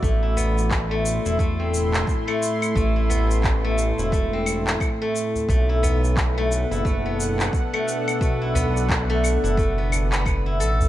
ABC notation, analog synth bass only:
X:1
M:4/4
L:1/16
Q:"Swing 16ths" 1/4=88
K:Ador
V:1 name="Analog synth bass" clef=bass
A,,,6- A,,, E,,,4- E,,, z4 | A,,,6- A,,, E,,,4- E,,, z4 | B,,,6- B,,, F,,,4- F,,, z4 | B,,,6- B,,, F,,,6- F,,, A,,,2 |]